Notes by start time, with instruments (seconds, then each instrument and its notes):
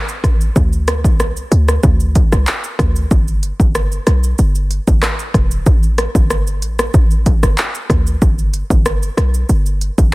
0.09 shaker
0.24 808-style bass A1, kick, cross-stick, closed hi-hat, shaker
0.41 shaker
0.56 808-style bass D2, kick, shaker
0.73 shaker
0.88 cross-stick, closed hi-hat, shaker
1.04 808-style bass C2, kick, shaker
1.20 cross-stick, shaker
1.37 shaker
1.52 808-style bass D2, closed hi-hat, shaker
1.68 cross-stick, shaker
1.83 808-style bass D2, kick, shaker
2.00 shaker
2.15 kick, closed hi-hat, shaker
2.32 808-style bass C2, cross-stick, shaker
2.47 clap, shaker
2.64 shaker
2.79 808-style bass D2, kick, cross-stick, closed hi-hat, shaker
2.96 shaker
3.11 808-style bass G1, kick, shaker
3.28 shaker
3.43 closed hi-hat, shaker
3.60 808-style bass G1, kick, shaker
3.75 cross-stick, shaker
3.92 shaker
4.07 808-style bass B1, cross-stick, closed hi-hat, shaker
4.24 shaker
4.39 808-style bass G1, shaker
4.55 shaker
4.71 closed hi-hat, shaker
4.88 808-style bass G1, kick, shaker
5.02 cross-stick, clap, shaker
5.19 shaker
5.34 808-style bass E1, kick, cross-stick, closed hi-hat, shaker
5.51 shaker
5.66 808-style bass A1, kick, shaker
5.83 shaker
5.98 cross-stick, closed hi-hat, shaker
6.15 808-style bass G1, kick, shaker
6.30 cross-stick, shaker
6.47 shaker
6.62 808-style bass A1, closed hi-hat, shaker
6.79 cross-stick, shaker
6.94 808-style bass A1, kick, shaker
7.11 shaker
7.26 kick, closed hi-hat, shaker
7.43 808-style bass G1, cross-stick, shaker
7.58 clap, shaker
7.75 shaker
7.90 808-style bass D2, kick, cross-stick, closed hi-hat, shaker
8.07 shaker
8.22 808-style bass G1, kick, shaker
8.39 shaker
8.54 closed hi-hat, shaker
8.70 808-style bass G1, kick, shaker
8.86 cross-stick, shaker
9.03 shaker
9.17 808-style bass B1, cross-stick, closed hi-hat, shaker
9.34 shaker
9.49 808-style bass G1, shaker
9.66 shaker
9.81 closed hi-hat, shaker
9.98 808-style bass G1, kick, shaker